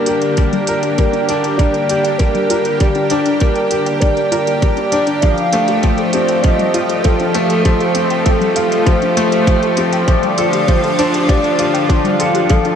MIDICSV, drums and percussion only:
0, 0, Header, 1, 2, 480
1, 0, Start_track
1, 0, Key_signature, -2, "minor"
1, 0, Tempo, 606061
1, 303, Time_signature, 4, 2, 24, 8
1, 10101, End_track
2, 0, Start_track
2, 0, Title_t, "Drums"
2, 50, Note_on_c, 9, 42, 64
2, 129, Note_off_c, 9, 42, 0
2, 171, Note_on_c, 9, 42, 29
2, 250, Note_off_c, 9, 42, 0
2, 293, Note_on_c, 9, 42, 40
2, 299, Note_on_c, 9, 36, 99
2, 373, Note_off_c, 9, 42, 0
2, 379, Note_off_c, 9, 36, 0
2, 417, Note_on_c, 9, 42, 21
2, 497, Note_off_c, 9, 42, 0
2, 532, Note_on_c, 9, 42, 71
2, 612, Note_off_c, 9, 42, 0
2, 656, Note_on_c, 9, 42, 30
2, 735, Note_off_c, 9, 42, 0
2, 777, Note_on_c, 9, 42, 38
2, 780, Note_on_c, 9, 36, 93
2, 856, Note_off_c, 9, 42, 0
2, 860, Note_off_c, 9, 36, 0
2, 898, Note_on_c, 9, 42, 20
2, 977, Note_off_c, 9, 42, 0
2, 1019, Note_on_c, 9, 42, 69
2, 1098, Note_off_c, 9, 42, 0
2, 1141, Note_on_c, 9, 42, 29
2, 1220, Note_off_c, 9, 42, 0
2, 1260, Note_on_c, 9, 36, 104
2, 1261, Note_on_c, 9, 42, 42
2, 1339, Note_off_c, 9, 36, 0
2, 1340, Note_off_c, 9, 42, 0
2, 1379, Note_on_c, 9, 42, 21
2, 1458, Note_off_c, 9, 42, 0
2, 1500, Note_on_c, 9, 42, 71
2, 1580, Note_off_c, 9, 42, 0
2, 1620, Note_on_c, 9, 42, 31
2, 1700, Note_off_c, 9, 42, 0
2, 1737, Note_on_c, 9, 42, 42
2, 1741, Note_on_c, 9, 36, 93
2, 1817, Note_off_c, 9, 42, 0
2, 1820, Note_off_c, 9, 36, 0
2, 1859, Note_on_c, 9, 42, 20
2, 1938, Note_off_c, 9, 42, 0
2, 1980, Note_on_c, 9, 42, 70
2, 2060, Note_off_c, 9, 42, 0
2, 2099, Note_on_c, 9, 42, 27
2, 2178, Note_off_c, 9, 42, 0
2, 2220, Note_on_c, 9, 42, 41
2, 2223, Note_on_c, 9, 36, 98
2, 2299, Note_off_c, 9, 42, 0
2, 2302, Note_off_c, 9, 36, 0
2, 2336, Note_on_c, 9, 42, 19
2, 2415, Note_off_c, 9, 42, 0
2, 2455, Note_on_c, 9, 42, 71
2, 2534, Note_off_c, 9, 42, 0
2, 2579, Note_on_c, 9, 42, 29
2, 2658, Note_off_c, 9, 42, 0
2, 2696, Note_on_c, 9, 42, 39
2, 2703, Note_on_c, 9, 36, 94
2, 2775, Note_off_c, 9, 42, 0
2, 2783, Note_off_c, 9, 36, 0
2, 2815, Note_on_c, 9, 42, 21
2, 2895, Note_off_c, 9, 42, 0
2, 2936, Note_on_c, 9, 42, 68
2, 3015, Note_off_c, 9, 42, 0
2, 3060, Note_on_c, 9, 42, 31
2, 3139, Note_off_c, 9, 42, 0
2, 3180, Note_on_c, 9, 42, 40
2, 3184, Note_on_c, 9, 36, 106
2, 3259, Note_off_c, 9, 42, 0
2, 3263, Note_off_c, 9, 36, 0
2, 3302, Note_on_c, 9, 42, 21
2, 3381, Note_off_c, 9, 42, 0
2, 3422, Note_on_c, 9, 42, 68
2, 3501, Note_off_c, 9, 42, 0
2, 3542, Note_on_c, 9, 42, 30
2, 3621, Note_off_c, 9, 42, 0
2, 3661, Note_on_c, 9, 42, 43
2, 3662, Note_on_c, 9, 36, 96
2, 3740, Note_off_c, 9, 42, 0
2, 3741, Note_off_c, 9, 36, 0
2, 3777, Note_on_c, 9, 42, 20
2, 3856, Note_off_c, 9, 42, 0
2, 3897, Note_on_c, 9, 42, 72
2, 3976, Note_off_c, 9, 42, 0
2, 4015, Note_on_c, 9, 42, 29
2, 4094, Note_off_c, 9, 42, 0
2, 4136, Note_on_c, 9, 42, 41
2, 4143, Note_on_c, 9, 36, 97
2, 4215, Note_off_c, 9, 42, 0
2, 4222, Note_off_c, 9, 36, 0
2, 4258, Note_on_c, 9, 42, 19
2, 4337, Note_off_c, 9, 42, 0
2, 4376, Note_on_c, 9, 42, 70
2, 4456, Note_off_c, 9, 42, 0
2, 4498, Note_on_c, 9, 42, 29
2, 4577, Note_off_c, 9, 42, 0
2, 4617, Note_on_c, 9, 42, 37
2, 4623, Note_on_c, 9, 36, 87
2, 4697, Note_off_c, 9, 42, 0
2, 4702, Note_off_c, 9, 36, 0
2, 4734, Note_on_c, 9, 42, 20
2, 4813, Note_off_c, 9, 42, 0
2, 4855, Note_on_c, 9, 42, 66
2, 4934, Note_off_c, 9, 42, 0
2, 4977, Note_on_c, 9, 42, 28
2, 5056, Note_off_c, 9, 42, 0
2, 5098, Note_on_c, 9, 42, 42
2, 5102, Note_on_c, 9, 36, 108
2, 5177, Note_off_c, 9, 42, 0
2, 5182, Note_off_c, 9, 36, 0
2, 5222, Note_on_c, 9, 42, 20
2, 5301, Note_off_c, 9, 42, 0
2, 5340, Note_on_c, 9, 42, 66
2, 5419, Note_off_c, 9, 42, 0
2, 5461, Note_on_c, 9, 42, 31
2, 5540, Note_off_c, 9, 42, 0
2, 5578, Note_on_c, 9, 42, 42
2, 5583, Note_on_c, 9, 36, 97
2, 5657, Note_off_c, 9, 42, 0
2, 5662, Note_off_c, 9, 36, 0
2, 5699, Note_on_c, 9, 42, 19
2, 5778, Note_off_c, 9, 42, 0
2, 5817, Note_on_c, 9, 42, 68
2, 5896, Note_off_c, 9, 42, 0
2, 5939, Note_on_c, 9, 42, 30
2, 6018, Note_off_c, 9, 42, 0
2, 6059, Note_on_c, 9, 42, 41
2, 6063, Note_on_c, 9, 36, 95
2, 6139, Note_off_c, 9, 42, 0
2, 6142, Note_off_c, 9, 36, 0
2, 6181, Note_on_c, 9, 42, 19
2, 6260, Note_off_c, 9, 42, 0
2, 6294, Note_on_c, 9, 42, 71
2, 6374, Note_off_c, 9, 42, 0
2, 6418, Note_on_c, 9, 42, 27
2, 6497, Note_off_c, 9, 42, 0
2, 6539, Note_on_c, 9, 42, 39
2, 6543, Note_on_c, 9, 36, 88
2, 6619, Note_off_c, 9, 42, 0
2, 6623, Note_off_c, 9, 36, 0
2, 6665, Note_on_c, 9, 42, 19
2, 6744, Note_off_c, 9, 42, 0
2, 6779, Note_on_c, 9, 42, 69
2, 6858, Note_off_c, 9, 42, 0
2, 6906, Note_on_c, 9, 42, 30
2, 6985, Note_off_c, 9, 42, 0
2, 7022, Note_on_c, 9, 42, 40
2, 7023, Note_on_c, 9, 36, 102
2, 7101, Note_off_c, 9, 42, 0
2, 7102, Note_off_c, 9, 36, 0
2, 7144, Note_on_c, 9, 42, 20
2, 7223, Note_off_c, 9, 42, 0
2, 7263, Note_on_c, 9, 42, 72
2, 7342, Note_off_c, 9, 42, 0
2, 7383, Note_on_c, 9, 42, 29
2, 7462, Note_off_c, 9, 42, 0
2, 7502, Note_on_c, 9, 36, 96
2, 7503, Note_on_c, 9, 42, 38
2, 7581, Note_off_c, 9, 36, 0
2, 7582, Note_off_c, 9, 42, 0
2, 7624, Note_on_c, 9, 42, 20
2, 7703, Note_off_c, 9, 42, 0
2, 7738, Note_on_c, 9, 42, 66
2, 7817, Note_off_c, 9, 42, 0
2, 7861, Note_on_c, 9, 42, 28
2, 7940, Note_off_c, 9, 42, 0
2, 7982, Note_on_c, 9, 36, 98
2, 7982, Note_on_c, 9, 42, 40
2, 8061, Note_off_c, 9, 36, 0
2, 8061, Note_off_c, 9, 42, 0
2, 8102, Note_on_c, 9, 42, 19
2, 8182, Note_off_c, 9, 42, 0
2, 8219, Note_on_c, 9, 42, 70
2, 8298, Note_off_c, 9, 42, 0
2, 8340, Note_on_c, 9, 42, 31
2, 8420, Note_off_c, 9, 42, 0
2, 8460, Note_on_c, 9, 42, 36
2, 8461, Note_on_c, 9, 36, 94
2, 8540, Note_off_c, 9, 36, 0
2, 8540, Note_off_c, 9, 42, 0
2, 8583, Note_on_c, 9, 42, 19
2, 8662, Note_off_c, 9, 42, 0
2, 8702, Note_on_c, 9, 42, 68
2, 8782, Note_off_c, 9, 42, 0
2, 8824, Note_on_c, 9, 42, 29
2, 8903, Note_off_c, 9, 42, 0
2, 8941, Note_on_c, 9, 36, 102
2, 8944, Note_on_c, 9, 42, 39
2, 9020, Note_off_c, 9, 36, 0
2, 9024, Note_off_c, 9, 42, 0
2, 9062, Note_on_c, 9, 42, 20
2, 9141, Note_off_c, 9, 42, 0
2, 9178, Note_on_c, 9, 42, 68
2, 9257, Note_off_c, 9, 42, 0
2, 9303, Note_on_c, 9, 42, 28
2, 9382, Note_off_c, 9, 42, 0
2, 9422, Note_on_c, 9, 36, 89
2, 9422, Note_on_c, 9, 42, 38
2, 9501, Note_off_c, 9, 36, 0
2, 9501, Note_off_c, 9, 42, 0
2, 9543, Note_on_c, 9, 42, 21
2, 9622, Note_off_c, 9, 42, 0
2, 9661, Note_on_c, 9, 42, 61
2, 9740, Note_off_c, 9, 42, 0
2, 9779, Note_on_c, 9, 42, 28
2, 9858, Note_off_c, 9, 42, 0
2, 9896, Note_on_c, 9, 42, 41
2, 9901, Note_on_c, 9, 36, 103
2, 9975, Note_off_c, 9, 42, 0
2, 9980, Note_off_c, 9, 36, 0
2, 10018, Note_on_c, 9, 42, 21
2, 10097, Note_off_c, 9, 42, 0
2, 10101, End_track
0, 0, End_of_file